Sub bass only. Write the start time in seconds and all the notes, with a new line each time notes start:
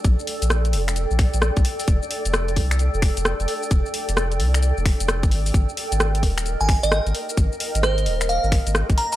0.04 A#1
0.42 A#1
0.73 F1
1.11 A#1
1.34 A#1
1.57 A#1
1.88 F1
2.25 F1
2.57 C2
2.94 F1
3.17 F1
3.40 F1
3.71 F1
4.09 F1
4.40 C2
4.77 F1
5.00 F1
5.23 G#1
5.54 G#1
5.92 G#1
6.23 D#1
6.60 G#1
6.83 G#1
7.06 G#1
7.37 G#1
7.75 G#1
8.06 D#1
8.44 G#1
8.66 G#1
8.89 G#1